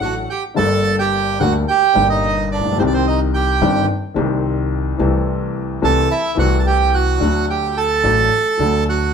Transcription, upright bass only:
0.01 0.25 A1 medium
0.58 1.37 G1 medium
1.41 1.64 D2 loud
1.96 2.58 G1 loud
2.59 2.65 A1 soft
2.65 2.71 A#1 medium
2.72 2.78 B1 medium
2.79 3.58 C2 medium
3.62 3.85 G1 loud
4.16 4.95 C2 loud
4.99 5.78 C2 medium
5.83 6.06 C2 loud
6.38 7.17 C2 loud
7.21 8.00 D2 medium
8.04 8.27 A1 loud
8.59 9.14 D2 medium

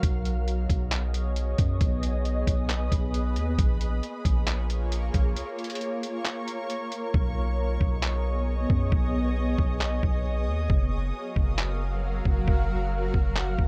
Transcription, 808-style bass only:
0.03 0.67 B1 loud
0.70 1.55 B1 loud
1.59 1.80 F#2 loud
1.81 2.45 B1 loud
2.47 2.90 B1 loud
2.92 3.38 B1 loud
3.36 3.58 D#2 loud
3.59 4.01 A#1 loud
4.25 5.11 A#1 loud
5.14 5.36 A#1 loud
7.14 7.78 B1 loud
7.81 8.66 B1 loud
8.70 8.91 F#2 loud
8.92 9.56 B1 loud
9.59 10.01 B1 medium
10.03 10.49 B1 loud
10.48 10.69 D#2 loud
10.70 11.12 F#1 loud
11.36 12.22 F#1 loud
12.25 12.47 F#1 loud
12.48 13.12 F#1 loud
13.14 13.57 F#1 medium
13.59 13.68 F#1 loud

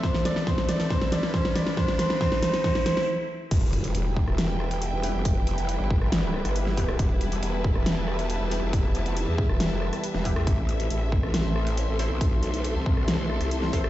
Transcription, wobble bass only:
3.51 3.93 E1 loud
3.95 4.26 E1 loud
4.27 4.47 E1 loud
4.49 4.91 E1 loud
4.93 5.13 E1 loud
5.14 5.78 F1 loud
5.80 6.43 G1 medium
6.45 6.97 G1 loud
6.99 7.41 E1 loud
7.43 7.74 E1 loud
7.75 7.95 E1 loud
7.97 8.39 E1 medium
8.40 8.61 E1 loud
8.62 9.26 F1 medium
9.28 9.48 E2 medium
9.49 9.69 E1 loud
9.71 9.91 F1 loud
10.14 10.34 E1 loud
10.36 10.45 E2 medium
10.47 10.89 A1 loud
10.90 11.21 A1 loud
11.23 11.43 A1 loud
11.45 11.87 A1 loud
11.88 12.08 A1 loud
12.10 12.74 B1 loud
12.75 13.20 C2 medium
13.20 13.39 B1 medium
13.41 13.89 C2 loud

